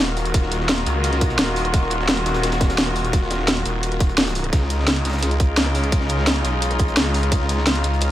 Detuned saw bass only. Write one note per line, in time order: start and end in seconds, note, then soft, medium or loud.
0.00 0.85 D#1 loud
0.86 1.37 C#2 loud
1.39 1.72 D#1 loud
1.74 2.25 D#1 loud
2.26 3.64 D#1 loud
3.66 4.51 D#1 loud
4.53 5.04 C#2 loud
5.05 6.43 C#2 loud
6.45 6.96 B1 loud
6.97 7.30 C#2 loud
7.32 7.83 C#2 loud
7.84 8.11 C#2 loud